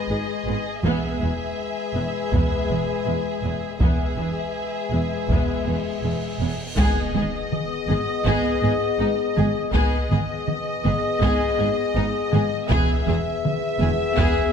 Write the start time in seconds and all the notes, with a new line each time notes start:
Already playing: G#3 G#4 B4 D#5
0.10 G#1 G#2 G#3
0.47 G#1 G#2 B3
0.84 E1 E2 G#3 B3 G#4 B4 E5, taiko
1.21 E1 E2 B3
1.95 E1 E2 B3
2.32 E1 E2 B3, taiko
2.69 E1 E2 B3
3.05 E1 E2 G#3
3.43 E1 E2 B3
3.80 E1 E2 G#3 B3 G#4 B4 E5, taiko, cymbal swell
4.18 E1 E2 B3
4.92 E1 E2 B3
5.29 E1 E2 B3, taiko
5.66 E1 E2 B3
6.03 E1 E2 G#3
6.40 E1 E2 B3
6.77 G#1 G#2 B3 G#4 D#5, taiko, impact
7.14 G#1 G#2 B3 G#4, taiko mid
7.52 taiko mid
7.88 G#1 G#2 B3 G#4, taiko mid
8.25 G#1 G#2 B3 G#4, taiko
8.62 G#1 G#2 B3 G#4
8.99 G#1 G#2 B3 D#4
9.37 G#1 G#2 B3 G#4, taiko mid
9.73 G#1 G#2 B3 G#4 D#5, taiko
10.11 G#1 G#2 B3 G#4, taiko mid
10.48 taiko mid
10.85 G#1 G#2 B3 G#4, taiko mid
11.22 G#1 G#2 B3 G#4, taiko
11.58 G#1 G#2 B3 G#4
11.95 G#1 G#2 B3 D#4
12.32 G#1 G#2 B3 G#4, taiko mid
12.70 E1 E2 B3 G#4 E5, taiko
13.06 E1 E2 B3 G#4, taiko mid
13.45 taiko mid
13.80 E1 E2 B3 G#4, taiko mid
14.17 E1 E2 B3 G#4, taiko